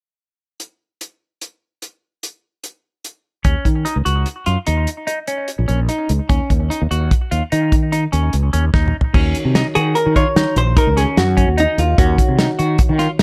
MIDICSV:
0, 0, Header, 1, 6, 480
1, 0, Start_track
1, 0, Tempo, 406229
1, 708, Time_signature, 7, 2, 24, 8
1, 15629, End_track
2, 0, Start_track
2, 0, Title_t, "Hollow-body jazz guitar"
2, 0, Program_c, 0, 26
2, 11523, Note_on_c, 0, 68, 82
2, 11758, Note_on_c, 0, 70, 84
2, 11770, Note_off_c, 0, 68, 0
2, 12002, Note_off_c, 0, 70, 0
2, 12007, Note_on_c, 0, 73, 85
2, 12450, Note_off_c, 0, 73, 0
2, 12498, Note_on_c, 0, 72, 81
2, 12713, Note_off_c, 0, 72, 0
2, 12737, Note_on_c, 0, 70, 85
2, 12967, Note_on_c, 0, 68, 72
2, 12975, Note_off_c, 0, 70, 0
2, 13031, Note_off_c, 0, 68, 0
2, 13208, Note_on_c, 0, 66, 75
2, 13696, Note_off_c, 0, 66, 0
2, 13706, Note_on_c, 0, 63, 82
2, 13934, Note_on_c, 0, 65, 72
2, 13938, Note_off_c, 0, 63, 0
2, 14163, Note_off_c, 0, 65, 0
2, 14168, Note_on_c, 0, 66, 80
2, 15071, Note_off_c, 0, 66, 0
2, 15629, End_track
3, 0, Start_track
3, 0, Title_t, "Tine electric piano"
3, 0, Program_c, 1, 4
3, 10794, Note_on_c, 1, 51, 64
3, 10799, Note_on_c, 1, 63, 54
3, 10805, Note_on_c, 1, 66, 54
3, 10819, Note_on_c, 1, 73, 67
3, 14103, Note_off_c, 1, 51, 0
3, 14106, Note_off_c, 1, 63, 0
3, 14109, Note_off_c, 1, 66, 0
3, 14116, Note_off_c, 1, 73, 0
3, 14154, Note_on_c, 1, 51, 52
3, 14168, Note_on_c, 1, 63, 45
3, 14171, Note_on_c, 1, 66, 48
3, 14179, Note_on_c, 1, 73, 62
3, 15629, Note_off_c, 1, 51, 0
3, 15629, Note_off_c, 1, 63, 0
3, 15629, Note_off_c, 1, 66, 0
3, 15629, Note_off_c, 1, 73, 0
3, 15629, End_track
4, 0, Start_track
4, 0, Title_t, "Clean electric guitar"
4, 0, Program_c, 2, 27
4, 4074, Note_on_c, 2, 61, 68
4, 4336, Note_off_c, 2, 61, 0
4, 4548, Note_on_c, 2, 63, 59
4, 4682, Note_off_c, 2, 63, 0
4, 4788, Note_on_c, 2, 66, 58
4, 5053, Note_off_c, 2, 66, 0
4, 5273, Note_on_c, 2, 65, 58
4, 5406, Note_off_c, 2, 65, 0
4, 5514, Note_on_c, 2, 63, 57
4, 5777, Note_off_c, 2, 63, 0
4, 5989, Note_on_c, 2, 63, 61
4, 6123, Note_off_c, 2, 63, 0
4, 6234, Note_on_c, 2, 61, 56
4, 6497, Note_off_c, 2, 61, 0
4, 6710, Note_on_c, 2, 61, 63
4, 6844, Note_off_c, 2, 61, 0
4, 6956, Note_on_c, 2, 63, 63
4, 7219, Note_off_c, 2, 63, 0
4, 7435, Note_on_c, 2, 61, 77
4, 7699, Note_off_c, 2, 61, 0
4, 7919, Note_on_c, 2, 63, 64
4, 8051, Note_off_c, 2, 63, 0
4, 8162, Note_on_c, 2, 66, 58
4, 8424, Note_off_c, 2, 66, 0
4, 8642, Note_on_c, 2, 65, 60
4, 8773, Note_off_c, 2, 65, 0
4, 8886, Note_on_c, 2, 63, 65
4, 9147, Note_off_c, 2, 63, 0
4, 9361, Note_on_c, 2, 63, 66
4, 9493, Note_off_c, 2, 63, 0
4, 9598, Note_on_c, 2, 61, 63
4, 9861, Note_off_c, 2, 61, 0
4, 10080, Note_on_c, 2, 61, 63
4, 10212, Note_off_c, 2, 61, 0
4, 10324, Note_on_c, 2, 63, 74
4, 10585, Note_off_c, 2, 63, 0
4, 10804, Note_on_c, 2, 61, 74
4, 11065, Note_off_c, 2, 61, 0
4, 11285, Note_on_c, 2, 63, 72
4, 11415, Note_off_c, 2, 63, 0
4, 11525, Note_on_c, 2, 66, 58
4, 11785, Note_off_c, 2, 66, 0
4, 12004, Note_on_c, 2, 65, 64
4, 12134, Note_off_c, 2, 65, 0
4, 12249, Note_on_c, 2, 63, 73
4, 12507, Note_off_c, 2, 63, 0
4, 12721, Note_on_c, 2, 63, 70
4, 12851, Note_off_c, 2, 63, 0
4, 12960, Note_on_c, 2, 61, 70
4, 13220, Note_off_c, 2, 61, 0
4, 13432, Note_on_c, 2, 61, 66
4, 13564, Note_off_c, 2, 61, 0
4, 13677, Note_on_c, 2, 63, 74
4, 13936, Note_off_c, 2, 63, 0
4, 14157, Note_on_c, 2, 61, 78
4, 14416, Note_off_c, 2, 61, 0
4, 14635, Note_on_c, 2, 63, 77
4, 14764, Note_off_c, 2, 63, 0
4, 14872, Note_on_c, 2, 66, 62
4, 15132, Note_off_c, 2, 66, 0
4, 15348, Note_on_c, 2, 65, 68
4, 15479, Note_off_c, 2, 65, 0
4, 15591, Note_on_c, 2, 63, 72
4, 15629, Note_off_c, 2, 63, 0
4, 15629, End_track
5, 0, Start_track
5, 0, Title_t, "Fretless electric bass"
5, 0, Program_c, 3, 35
5, 4075, Note_on_c, 3, 39, 73
5, 4181, Note_off_c, 3, 39, 0
5, 4314, Note_on_c, 3, 51, 59
5, 4525, Note_off_c, 3, 51, 0
5, 4675, Note_on_c, 3, 37, 67
5, 4781, Note_off_c, 3, 37, 0
5, 4794, Note_on_c, 3, 37, 65
5, 5005, Note_off_c, 3, 37, 0
5, 5277, Note_on_c, 3, 42, 60
5, 5383, Note_off_c, 3, 42, 0
5, 5522, Note_on_c, 3, 39, 66
5, 5730, Note_off_c, 3, 39, 0
5, 6599, Note_on_c, 3, 34, 73
5, 6705, Note_off_c, 3, 34, 0
5, 6724, Note_on_c, 3, 34, 72
5, 6932, Note_off_c, 3, 34, 0
5, 7200, Note_on_c, 3, 37, 78
5, 7306, Note_off_c, 3, 37, 0
5, 7439, Note_on_c, 3, 39, 67
5, 7546, Note_off_c, 3, 39, 0
5, 7683, Note_on_c, 3, 39, 66
5, 7892, Note_off_c, 3, 39, 0
5, 8052, Note_on_c, 3, 39, 76
5, 8153, Note_off_c, 3, 39, 0
5, 8163, Note_on_c, 3, 39, 68
5, 8372, Note_off_c, 3, 39, 0
5, 8643, Note_on_c, 3, 39, 66
5, 8749, Note_off_c, 3, 39, 0
5, 8888, Note_on_c, 3, 51, 69
5, 9511, Note_off_c, 3, 51, 0
5, 9605, Note_on_c, 3, 39, 75
5, 9813, Note_off_c, 3, 39, 0
5, 9848, Note_on_c, 3, 37, 74
5, 10055, Note_off_c, 3, 37, 0
5, 10085, Note_on_c, 3, 39, 78
5, 10293, Note_off_c, 3, 39, 0
5, 10325, Note_on_c, 3, 39, 70
5, 10533, Note_off_c, 3, 39, 0
5, 10803, Note_on_c, 3, 39, 76
5, 11012, Note_off_c, 3, 39, 0
5, 11162, Note_on_c, 3, 48, 74
5, 11371, Note_off_c, 3, 48, 0
5, 11531, Note_on_c, 3, 51, 73
5, 11736, Note_off_c, 3, 51, 0
5, 11888, Note_on_c, 3, 51, 69
5, 12094, Note_off_c, 3, 51, 0
5, 12238, Note_on_c, 3, 51, 61
5, 12343, Note_off_c, 3, 51, 0
5, 12477, Note_on_c, 3, 34, 77
5, 12686, Note_off_c, 3, 34, 0
5, 12843, Note_on_c, 3, 37, 76
5, 13049, Note_off_c, 3, 37, 0
5, 13200, Note_on_c, 3, 42, 87
5, 13511, Note_off_c, 3, 42, 0
5, 13558, Note_on_c, 3, 39, 68
5, 13765, Note_off_c, 3, 39, 0
5, 13915, Note_on_c, 3, 39, 81
5, 14123, Note_off_c, 3, 39, 0
5, 14157, Note_on_c, 3, 39, 87
5, 14364, Note_off_c, 3, 39, 0
5, 14512, Note_on_c, 3, 48, 72
5, 14720, Note_off_c, 3, 48, 0
5, 14876, Note_on_c, 3, 51, 79
5, 15082, Note_off_c, 3, 51, 0
5, 15233, Note_on_c, 3, 51, 72
5, 15439, Note_off_c, 3, 51, 0
5, 15593, Note_on_c, 3, 51, 64
5, 15629, Note_off_c, 3, 51, 0
5, 15629, End_track
6, 0, Start_track
6, 0, Title_t, "Drums"
6, 707, Note_on_c, 9, 42, 44
6, 825, Note_off_c, 9, 42, 0
6, 1193, Note_on_c, 9, 42, 45
6, 1311, Note_off_c, 9, 42, 0
6, 1672, Note_on_c, 9, 42, 44
6, 1790, Note_off_c, 9, 42, 0
6, 2152, Note_on_c, 9, 42, 43
6, 2270, Note_off_c, 9, 42, 0
6, 2637, Note_on_c, 9, 42, 45
6, 2755, Note_off_c, 9, 42, 0
6, 3114, Note_on_c, 9, 42, 41
6, 3233, Note_off_c, 9, 42, 0
6, 3598, Note_on_c, 9, 42, 39
6, 3716, Note_off_c, 9, 42, 0
6, 4071, Note_on_c, 9, 42, 60
6, 4074, Note_on_c, 9, 36, 71
6, 4189, Note_off_c, 9, 42, 0
6, 4192, Note_off_c, 9, 36, 0
6, 4315, Note_on_c, 9, 36, 52
6, 4321, Note_on_c, 9, 42, 44
6, 4433, Note_off_c, 9, 36, 0
6, 4439, Note_off_c, 9, 42, 0
6, 4556, Note_on_c, 9, 42, 70
6, 4674, Note_off_c, 9, 42, 0
6, 4795, Note_on_c, 9, 42, 54
6, 4913, Note_off_c, 9, 42, 0
6, 5031, Note_on_c, 9, 42, 59
6, 5149, Note_off_c, 9, 42, 0
6, 5270, Note_on_c, 9, 42, 46
6, 5388, Note_off_c, 9, 42, 0
6, 5512, Note_on_c, 9, 42, 63
6, 5631, Note_off_c, 9, 42, 0
6, 5755, Note_on_c, 9, 42, 48
6, 5873, Note_off_c, 9, 42, 0
6, 5996, Note_on_c, 9, 42, 70
6, 6114, Note_off_c, 9, 42, 0
6, 6232, Note_on_c, 9, 42, 49
6, 6350, Note_off_c, 9, 42, 0
6, 6472, Note_on_c, 9, 42, 58
6, 6591, Note_off_c, 9, 42, 0
6, 6717, Note_on_c, 9, 42, 41
6, 6835, Note_off_c, 9, 42, 0
6, 6955, Note_on_c, 9, 42, 63
6, 7073, Note_off_c, 9, 42, 0
6, 7198, Note_on_c, 9, 42, 46
6, 7316, Note_off_c, 9, 42, 0
6, 7438, Note_on_c, 9, 42, 62
6, 7439, Note_on_c, 9, 36, 82
6, 7556, Note_off_c, 9, 42, 0
6, 7557, Note_off_c, 9, 36, 0
6, 7682, Note_on_c, 9, 36, 54
6, 7684, Note_on_c, 9, 42, 46
6, 7800, Note_off_c, 9, 36, 0
6, 7802, Note_off_c, 9, 42, 0
6, 7931, Note_on_c, 9, 42, 67
6, 8050, Note_off_c, 9, 42, 0
6, 8170, Note_on_c, 9, 42, 50
6, 8288, Note_off_c, 9, 42, 0
6, 8404, Note_on_c, 9, 36, 78
6, 8405, Note_on_c, 9, 42, 58
6, 8523, Note_off_c, 9, 36, 0
6, 8523, Note_off_c, 9, 42, 0
6, 8646, Note_on_c, 9, 42, 45
6, 8764, Note_off_c, 9, 42, 0
6, 8885, Note_on_c, 9, 42, 67
6, 9004, Note_off_c, 9, 42, 0
6, 9123, Note_on_c, 9, 36, 67
6, 9126, Note_on_c, 9, 42, 50
6, 9242, Note_off_c, 9, 36, 0
6, 9244, Note_off_c, 9, 42, 0
6, 9365, Note_on_c, 9, 42, 72
6, 9483, Note_off_c, 9, 42, 0
6, 9605, Note_on_c, 9, 42, 52
6, 9723, Note_off_c, 9, 42, 0
6, 9841, Note_on_c, 9, 42, 66
6, 9959, Note_off_c, 9, 42, 0
6, 10083, Note_on_c, 9, 42, 53
6, 10201, Note_off_c, 9, 42, 0
6, 10324, Note_on_c, 9, 36, 83
6, 10325, Note_on_c, 9, 38, 43
6, 10442, Note_off_c, 9, 36, 0
6, 10443, Note_off_c, 9, 38, 0
6, 10489, Note_on_c, 9, 47, 49
6, 10607, Note_off_c, 9, 47, 0
6, 10647, Note_on_c, 9, 43, 75
6, 10765, Note_off_c, 9, 43, 0
6, 10803, Note_on_c, 9, 36, 91
6, 10805, Note_on_c, 9, 49, 79
6, 10921, Note_off_c, 9, 36, 0
6, 10923, Note_off_c, 9, 49, 0
6, 11043, Note_on_c, 9, 42, 48
6, 11162, Note_off_c, 9, 42, 0
6, 11285, Note_on_c, 9, 38, 99
6, 11285, Note_on_c, 9, 42, 72
6, 11403, Note_off_c, 9, 38, 0
6, 11403, Note_off_c, 9, 42, 0
6, 11524, Note_on_c, 9, 42, 51
6, 11642, Note_off_c, 9, 42, 0
6, 11761, Note_on_c, 9, 42, 64
6, 11879, Note_off_c, 9, 42, 0
6, 12003, Note_on_c, 9, 36, 53
6, 12007, Note_on_c, 9, 42, 45
6, 12121, Note_off_c, 9, 36, 0
6, 12125, Note_off_c, 9, 42, 0
6, 12246, Note_on_c, 9, 38, 91
6, 12246, Note_on_c, 9, 42, 67
6, 12364, Note_off_c, 9, 38, 0
6, 12364, Note_off_c, 9, 42, 0
6, 12480, Note_on_c, 9, 42, 58
6, 12598, Note_off_c, 9, 42, 0
6, 12722, Note_on_c, 9, 36, 94
6, 12722, Note_on_c, 9, 42, 80
6, 12840, Note_off_c, 9, 36, 0
6, 12840, Note_off_c, 9, 42, 0
6, 12966, Note_on_c, 9, 38, 30
6, 12966, Note_on_c, 9, 42, 61
6, 13084, Note_off_c, 9, 38, 0
6, 13084, Note_off_c, 9, 42, 0
6, 13203, Note_on_c, 9, 38, 84
6, 13203, Note_on_c, 9, 42, 69
6, 13321, Note_off_c, 9, 38, 0
6, 13321, Note_off_c, 9, 42, 0
6, 13440, Note_on_c, 9, 36, 58
6, 13440, Note_on_c, 9, 42, 55
6, 13558, Note_off_c, 9, 36, 0
6, 13559, Note_off_c, 9, 42, 0
6, 13682, Note_on_c, 9, 42, 73
6, 13800, Note_off_c, 9, 42, 0
6, 13923, Note_on_c, 9, 42, 54
6, 14041, Note_off_c, 9, 42, 0
6, 14159, Note_on_c, 9, 36, 96
6, 14161, Note_on_c, 9, 42, 77
6, 14277, Note_off_c, 9, 36, 0
6, 14279, Note_off_c, 9, 42, 0
6, 14397, Note_on_c, 9, 36, 66
6, 14400, Note_on_c, 9, 42, 54
6, 14515, Note_off_c, 9, 36, 0
6, 14518, Note_off_c, 9, 42, 0
6, 14635, Note_on_c, 9, 38, 104
6, 14635, Note_on_c, 9, 42, 72
6, 14754, Note_off_c, 9, 38, 0
6, 14754, Note_off_c, 9, 42, 0
6, 14876, Note_on_c, 9, 42, 52
6, 14994, Note_off_c, 9, 42, 0
6, 15106, Note_on_c, 9, 42, 67
6, 15111, Note_on_c, 9, 36, 82
6, 15224, Note_off_c, 9, 42, 0
6, 15229, Note_off_c, 9, 36, 0
6, 15350, Note_on_c, 9, 38, 30
6, 15350, Note_on_c, 9, 42, 43
6, 15468, Note_off_c, 9, 38, 0
6, 15468, Note_off_c, 9, 42, 0
6, 15589, Note_on_c, 9, 38, 91
6, 15589, Note_on_c, 9, 42, 65
6, 15629, Note_off_c, 9, 38, 0
6, 15629, Note_off_c, 9, 42, 0
6, 15629, End_track
0, 0, End_of_file